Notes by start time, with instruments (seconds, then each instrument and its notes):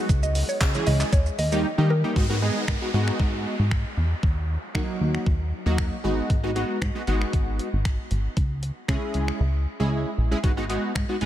0.09 analog synth bass C#2, kick, closed hi-hat, shaker
0.23 synth pluck D#5, shaker
0.35 open hi-hat, shaker
0.49 synth pluck C#5, shaker
0.61 analog synth bass C#3, kick, clap, closed hi-hat, tambourine, shaker
0.75 analog polysynth E3 G#3 C#4 E4 G#4, shaker
0.87 analog synth bass C#2, synth pluck D#5, open hi-hat, shaker
1.00 clap, shaker
1.13 analog synth bass D#2, synth pluck C#5, kick, closed hi-hat, shaker
1.26 shaker
1.38 analog synth bass D#2, synth pluck D#5, open hi-hat, shaker
1.52 analog polysynth D#3 G3 A#3 D#4 G4, shaker
1.78 analog polysynth D#3 G3 A#3 D#4 G4, analog synth bass D#3
1.90 synth pluck A#4
2.04 analog polysynth D#3 G3 A#3 D#4 G4
2.16 analog synth bass G#2, analog polysynth G#3 B3 D#4 F#4, kick, downlifter
2.30 analog polysynth G#3 B3 D#4 F#4
2.42 analog polysynth G#3 B3 D#4 G#4
2.68 analog synth bass G#2, finger snap, kick
2.82 analog polysynth G#3 B3 D#4 F#4
2.94 analog synth bass G#2, analog polysynth G#3 B3 D#4 F#4
3.08 finger snap
3.20 analog synth bass G#2, kick
3.59 analog synth bass G#2
3.71 finger snap, kick
3.97 analog synth bass E2
4.23 analog synth bass D#2, kick
4.75 analog synth bass D#3, analog polysynth F#3 A#3 D#4 F#4, finger snap, kick
5.01 analog synth bass D#2
5.15 finger snap
5.26 analog synth bass D#2, kick
5.66 analog synth bass D#2, analog polysynth F#3 A#3 D#4 F#4
5.78 finger snap, kick
6.04 analog synth bass G#1, analog polysynth G#3 B3 D#4 F#4
6.30 analog synth bass G#1, kick, closed hi-hat
6.43 analog polysynth G#3 B3 D#4 F#4
6.55 analog polysynth G#3 B3 D#4 F#4, closed hi-hat
6.82 analog synth bass G#2, finger snap, kick, closed hi-hat
6.95 analog polysynth G#3 B3 D#4 F#4
7.07 analog synth bass G#1, analog polysynth G#3 B3 D#4 F#4, closed hi-hat
7.22 finger snap
7.33 analog synth bass G#1, kick, closed hi-hat
7.59 closed hi-hat
7.73 analog synth bass G#1
7.85 finger snap, kick, closed hi-hat
8.11 analog synth bass G#1, closed hi-hat
8.37 analog synth bass C#2, kick, closed hi-hat
8.63 closed hi-hat
8.88 analog synth bass C#3, analog polysynth G#3 C#4 E4 G#4, finger snap, kick, closed hi-hat
9.14 analog synth bass C#2, closed hi-hat
9.28 finger snap
9.40 analog synth bass C#2
9.80 analog synth bass C#2, analog polysynth G#3 C#4 E4 G#4
10.18 analog synth bass A#1
10.31 analog polysynth G#3 C#4 E4 G#4
10.43 analog synth bass G#1, analog polysynth G#3 B3 D#4 F#4, kick, closed hi-hat
10.57 analog polysynth G#3 B3 D#4 F#4
10.69 analog polysynth G#3 B3 D#4 F#4, closed hi-hat
10.95 analog synth bass G#2, finger snap, kick, closed hi-hat
11.09 analog polysynth G#3 B3 D#4 F#4
11.21 analog synth bass G#1, analog polysynth G#3 B3 D#4 G#4, closed hi-hat